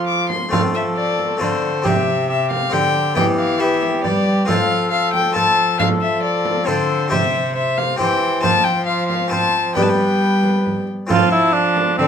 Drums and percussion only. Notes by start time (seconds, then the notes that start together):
0.30 frame drum
0.53 frame drum
1.19 frame drum
1.41 frame drum
1.85 frame drum
2.51 frame drum
2.73 frame drum
3.17 frame drum
3.83 frame drum
4.05 frame drum
4.49 frame drum
5.14 frame drum
5.36 frame drum
5.80 frame drum
6.45 frame drum
6.68 frame drum
7.12 frame drum
7.78 frame drum
8.00 frame drum
8.44 frame drum
9.10 frame drum
9.32 frame drum
9.77 frame drum
10.44 frame drum
10.66 frame drum
11.10 frame drum
11.77 frame drum
11.99 frame drum